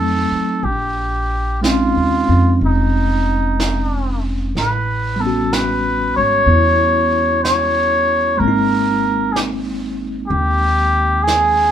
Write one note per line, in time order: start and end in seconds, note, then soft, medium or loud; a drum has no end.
0.00 0.27 F2 medium
0.00 0.62 F#3 soft
0.00 0.64 A3 soft
0.00 0.65 C4 soft
0.00 0.65 D#4 soft
0.00 0.65 A4 medium
0.31 muted upright bass stroke soft
0.63 1.91 A#1 medium
0.63 1.62 G4 medium
0.63 brush sweep soft
1.61 4.55 G#3 soft
1.61 2.27 C4 soft
1.61 4.56 C#4 soft
1.61 2.57 F4 medium
1.61 brush sweep soft
1.61 snare soft
1.61 hi-hat pedal soft
1.66 4.57 D#4 soft
1.96 2.26 D#2 soft
2.28 2.59 F2 soft
2.28 4.55 C4 soft
2.61 4.52 F1 medium
2.61 4.21 D#4 medium
2.61 brush sweep soft
3.60 brush sweep soft
3.60 snare soft
3.60 hi-hat pedal soft
4.55 6.12 A1 medium
4.55 5.22 B4 medium
4.55 brush sweep soft
4.55 snare soft
5.16 8.38 G3 soft
5.16 6.46 B3 soft
5.21 8.42 C#4 soft
5.21 5.54 A4 medium
5.26 8.43 F#4 soft
5.53 6.16 B4 medium
5.53 brush sweep soft
5.53 snare soft
5.53 hi-hat pedal soft
6.16 6.46 G#1 medium
6.16 7.40 C#5 medium
6.46 8.35 E2 medium
6.46 8.40 B3 soft
6.46 8.41 E4 soft
6.46 brush sweep soft
7.44 8.40 C#5 medium
7.44 brush sweep soft
7.44 snare soft
7.44 hi-hat pedal soft
8.37 10.27 G#1 medium
8.37 11.71 G#3 soft
8.37 11.71 A#3 soft
8.37 9.34 A#4 medium
8.37 brush sweep soft
8.44 11.71 C4 soft
8.48 11.71 D#4 soft
9.32 9.38 G4 medium
9.32 9.35 G#4 medium
9.32 brush sweep soft
9.32 snare soft
9.32 hi-hat pedal soft
10.28 11.71 D#2 medium
10.28 11.24 G4 medium
10.32 brush sweep soft
11.23 11.71 G#4 medium
11.28 brush sweep soft
11.28 snare soft
11.28 hi-hat pedal soft